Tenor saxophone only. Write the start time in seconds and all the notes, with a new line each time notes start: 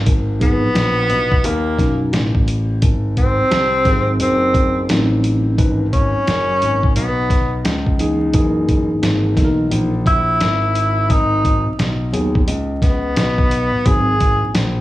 0.42 B3
1.46 A#3
3.18 C4
4.22 C4
5.93 C#4
6.96 B3
10.07 E4
11.11 D#4
12.83 B3
13.87 G#4